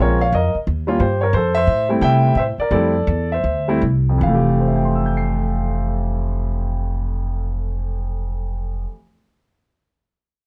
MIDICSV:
0, 0, Header, 1, 4, 480
1, 0, Start_track
1, 0, Key_signature, -1, "major"
1, 0, Tempo, 338409
1, 1898, Time_signature, 4, 2, 24, 8
1, 2863, Tempo, 356083
1, 4783, Tempo, 395257
1, 13311, End_track
2, 0, Start_track
2, 0, Title_t, "Grand piano"
2, 0, Program_c, 0, 0
2, 0, Note_on_c, 0, 56, 55
2, 0, Note_on_c, 0, 60, 50
2, 0, Note_on_c, 0, 61, 52
2, 0, Note_on_c, 0, 65, 59
2, 21, Note_on_c, 0, 73, 84
2, 35, Note_on_c, 0, 70, 65
2, 253, Note_off_c, 0, 56, 0
2, 253, Note_off_c, 0, 60, 0
2, 253, Note_off_c, 0, 61, 0
2, 259, Note_off_c, 0, 65, 0
2, 295, Note_off_c, 0, 73, 0
2, 298, Note_off_c, 0, 70, 0
2, 303, Note_on_c, 0, 77, 93
2, 316, Note_on_c, 0, 73, 73
2, 463, Note_off_c, 0, 73, 0
2, 472, Note_off_c, 0, 77, 0
2, 491, Note_on_c, 0, 75, 76
2, 505, Note_on_c, 0, 70, 62
2, 764, Note_off_c, 0, 75, 0
2, 772, Note_off_c, 0, 70, 0
2, 1234, Note_on_c, 0, 55, 71
2, 1244, Note_on_c, 0, 58, 65
2, 1249, Note_on_c, 0, 61, 62
2, 1251, Note_on_c, 0, 65, 78
2, 1395, Note_off_c, 0, 55, 0
2, 1400, Note_off_c, 0, 58, 0
2, 1403, Note_off_c, 0, 61, 0
2, 1404, Note_off_c, 0, 65, 0
2, 1425, Note_on_c, 0, 72, 74
2, 1447, Note_on_c, 0, 67, 58
2, 1709, Note_off_c, 0, 72, 0
2, 1716, Note_on_c, 0, 73, 77
2, 1721, Note_off_c, 0, 67, 0
2, 1748, Note_on_c, 0, 70, 65
2, 1880, Note_off_c, 0, 73, 0
2, 1897, Note_off_c, 0, 70, 0
2, 1901, Note_on_c, 0, 72, 86
2, 1939, Note_on_c, 0, 69, 66
2, 2192, Note_on_c, 0, 76, 110
2, 2207, Note_off_c, 0, 69, 0
2, 2210, Note_off_c, 0, 72, 0
2, 2231, Note_on_c, 0, 72, 73
2, 2648, Note_off_c, 0, 76, 0
2, 2668, Note_off_c, 0, 72, 0
2, 2679, Note_on_c, 0, 55, 66
2, 2688, Note_on_c, 0, 57, 58
2, 2693, Note_on_c, 0, 60, 58
2, 2698, Note_on_c, 0, 64, 70
2, 2870, Note_on_c, 0, 79, 101
2, 2894, Note_on_c, 0, 76, 81
2, 3290, Note_off_c, 0, 55, 0
2, 3294, Note_off_c, 0, 57, 0
2, 3296, Note_off_c, 0, 60, 0
2, 3299, Note_off_c, 0, 64, 0
2, 3312, Note_off_c, 0, 76, 0
2, 3342, Note_on_c, 0, 76, 85
2, 3346, Note_off_c, 0, 79, 0
2, 3368, Note_on_c, 0, 72, 66
2, 3409, Note_off_c, 0, 76, 0
2, 3436, Note_off_c, 0, 72, 0
2, 3643, Note_on_c, 0, 74, 83
2, 3665, Note_on_c, 0, 70, 63
2, 3788, Note_off_c, 0, 74, 0
2, 3796, Note_on_c, 0, 55, 69
2, 3803, Note_on_c, 0, 57, 57
2, 3805, Note_on_c, 0, 60, 60
2, 3808, Note_off_c, 0, 70, 0
2, 3808, Note_on_c, 0, 74, 87
2, 3815, Note_on_c, 0, 64, 73
2, 3840, Note_on_c, 0, 69, 72
2, 4078, Note_off_c, 0, 55, 0
2, 4082, Note_off_c, 0, 57, 0
2, 4083, Note_off_c, 0, 60, 0
2, 4087, Note_off_c, 0, 64, 0
2, 4569, Note_off_c, 0, 69, 0
2, 4619, Note_on_c, 0, 76, 77
2, 4631, Note_off_c, 0, 74, 0
2, 4646, Note_on_c, 0, 72, 59
2, 5070, Note_on_c, 0, 55, 69
2, 5077, Note_on_c, 0, 57, 65
2, 5078, Note_on_c, 0, 60, 66
2, 5087, Note_on_c, 0, 64, 78
2, 5205, Note_off_c, 0, 76, 0
2, 5218, Note_off_c, 0, 72, 0
2, 5222, Note_off_c, 0, 55, 0
2, 5225, Note_off_c, 0, 57, 0
2, 5226, Note_off_c, 0, 60, 0
2, 5230, Note_off_c, 0, 64, 0
2, 5572, Note_on_c, 0, 41, 63
2, 5678, Note_on_c, 0, 52, 62
2, 5739, Note_on_c, 0, 77, 78
2, 5785, Note_on_c, 0, 57, 63
2, 5881, Note_on_c, 0, 67, 68
2, 6191, Note_on_c, 0, 72, 45
2, 6283, Note_on_c, 0, 76, 42
2, 6379, Note_on_c, 0, 79, 43
2, 6493, Note_on_c, 0, 84, 41
2, 6615, Note_on_c, 0, 88, 39
2, 6746, Note_on_c, 0, 91, 37
2, 6882, Note_on_c, 0, 96, 37
2, 11318, Note_off_c, 0, 41, 0
2, 11338, Note_off_c, 0, 72, 0
2, 11354, Note_off_c, 0, 77, 0
2, 11372, Note_off_c, 0, 52, 0
2, 11385, Note_off_c, 0, 76, 0
2, 11425, Note_off_c, 0, 57, 0
2, 11433, Note_off_c, 0, 79, 0
2, 11473, Note_off_c, 0, 67, 0
2, 11489, Note_off_c, 0, 84, 0
2, 11551, Note_off_c, 0, 88, 0
2, 11616, Note_off_c, 0, 91, 0
2, 11684, Note_off_c, 0, 96, 0
2, 13311, End_track
3, 0, Start_track
3, 0, Title_t, "Upright bass"
3, 0, Program_c, 1, 32
3, 0, Note_on_c, 1, 34, 83
3, 444, Note_off_c, 1, 34, 0
3, 460, Note_on_c, 1, 41, 86
3, 747, Note_off_c, 1, 41, 0
3, 951, Note_on_c, 1, 39, 83
3, 1405, Note_off_c, 1, 39, 0
3, 1413, Note_on_c, 1, 43, 88
3, 1881, Note_off_c, 1, 43, 0
3, 1887, Note_on_c, 1, 41, 86
3, 2358, Note_off_c, 1, 41, 0
3, 2370, Note_on_c, 1, 45, 88
3, 2843, Note_off_c, 1, 45, 0
3, 2856, Note_on_c, 1, 48, 89
3, 3304, Note_off_c, 1, 48, 0
3, 3312, Note_on_c, 1, 45, 89
3, 3602, Note_off_c, 1, 45, 0
3, 3792, Note_on_c, 1, 41, 83
3, 4266, Note_off_c, 1, 41, 0
3, 4282, Note_on_c, 1, 40, 90
3, 4765, Note_off_c, 1, 40, 0
3, 4775, Note_on_c, 1, 38, 81
3, 5224, Note_off_c, 1, 38, 0
3, 5237, Note_on_c, 1, 36, 83
3, 5699, Note_off_c, 1, 36, 0
3, 5715, Note_on_c, 1, 29, 90
3, 11341, Note_off_c, 1, 29, 0
3, 13311, End_track
4, 0, Start_track
4, 0, Title_t, "Muted upright bass strokes"
4, 776, Note_on_c, 9, 29, 39
4, 918, Note_off_c, 9, 29, 0
4, 3622, Note_on_c, 9, 29, 41
4, 3757, Note_off_c, 9, 29, 0
4, 13311, End_track
0, 0, End_of_file